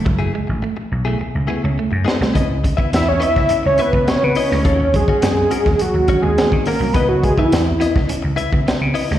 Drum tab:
HH |----------------|x-x-x-x-x-x-x-o-|x-x-x-x-x-x-x-o-|x-x-x-x-x-x-x-o-|
SD |--------------oo|----o--o----o--o|----o--o----o---|----o--o----o--o|
BD |o---------------|o-oo---o---o----|o-oo---o--o--o--|o-oo---o---o----|